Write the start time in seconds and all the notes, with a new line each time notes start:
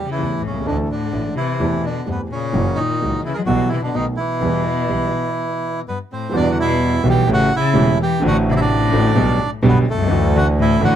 0.06 C#3
0.11 E3 E4
0.19 E2 E3 A3 C#4 G4
0.40 C2 A2
0.46 B1 C#3 C#4
0.54 C2
0.60 C#2
0.65 D2 A2 D3 E3 A3 D4 A4
0.70 D3
0.88 A2
0.92 D3 D4
1.13 A1 A2 E3 A3 D4 A4
1.35 C3 E3 E4
1.60 E2 E3 A3 C4 G4
1.82 B2 D4
1.88 D3
2.06 E2 G2 E3 A3 B3 C4 G4
2.12 B4
2.28 A#2 C#4
2.34 C#3
2.53 F#1 F#2 E3 F#3 A#3 C#4 F#4
2.76 A#2 D#3 D#4
3.01 C#2 C#3 E3 A#3 C#4 F#4
3.25 C#3 E3 E4
3.34 E3 F#3 G#3 G#4 A#4
3.46 B1 B2 E3 F#3 G3 B3 F#4 G4
3.69 C3 E3 E4
3.83 B2 D3 D4
3.94 B1 B2 D#3 A3 B3 D#4 F#4
4.17 B2 E3 E4
4.41 E2 E3 G3 B3 G4
4.89 B1 B2 E3 G3 B3 G4
5.88 G2 B3 B4
6.12 A2 C4 C5
6.31 E2 E3 G3 B3 F#4
6.36 B2 D4 D5
6.52 D3 F#5
6.60 B2 E4 E5
7.04 B1 B2 E3 G3 B3 F#4
7.09 G4 G5
7.27 A1 A2 E3 A3 C#4 G4
7.31 C#3 F#4 F#5
7.55 C#3 E4 E5
7.74 E1 E2 E3 A3 C#4 G4
8.01 E3 G4 G5
8.19 A1 A2 D3 A3 C4 F#4
8.25 D3 F#4 F#5
8.50 B2 C3 D5
8.56 A2 E4 E5
8.61 D4 D5
8.92 A1 A2 D3 A3 C4 F#4
9.15 B1 B2 D3 G3 B3 G4
9.63 B1 G2 B2 D3 G3 B3 G4
9.68 B3 B4
9.87 C2 F#2 A3 A4
9.93 B1
9.98 C2 C#2
10.07 D2 D3 E3 A3 D4 F#4
10.36 D3 F#4 F#5
10.59 A2 E4 E5
10.80 A1 A2 D3 E3 A3 D4 F#4
10.85 F#4 F#5